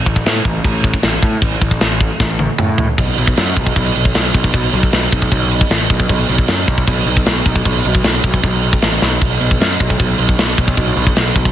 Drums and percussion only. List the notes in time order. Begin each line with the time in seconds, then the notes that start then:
0.06 kick
0.16 kick
0.26 snare, china
0.45 kick
0.64 kick, china
0.84 kick
0.94 kick
1.03 snare, china
1.23 kick
1.42 kick, china
1.61 kick
1.71 kick
1.81 snare, china
2.01 kick
2.20 kick, snare
2.39 high tom
2.58 mid tom
2.78 floor tom
2.98 kick, crash
3.18 crash
3.27 kick
3.37 snare, crash
3.57 kick, crash
3.67 kick
3.76 kick, crash
3.95 crash
4.05 kick
4.15 snare, crash
4.34 kick, crash
4.44 kick
4.54 kick, crash
4.74 crash
4.83 kick
4.93 snare, crash
5.12 kick, crash
5.22 kick
5.32 kick, crash
5.51 crash
5.61 kick
5.71 snare, crash
5.90 kick, crash
6.00 kick
6.09 kick, crash
6.29 crash
6.38 kick
6.48 snare, crash
6.68 kick, crash
6.78 kick
6.87 kick, crash
7.07 crash
7.17 kick
7.26 snare, crash
7.45 kick, crash
7.56 kick
7.65 kick, crash
7.85 crash
7.95 kick
8.04 snare, crash
8.24 kick, crash
8.34 kick
8.44 kick, crash
8.64 crash
8.73 kick
8.82 snare, crash
9.02 snare
9.21 kick, crash
9.41 crash
9.51 kick
9.61 snare, crash
9.80 kick, crash
9.90 kick
10.00 kick, crash
10.19 crash
10.29 kick
10.39 snare, crash
10.58 kick, crash
10.68 kick
10.77 kick, crash
10.96 crash
11.07 kick
11.16 snare, crash
11.35 kick, crash
11.45 kick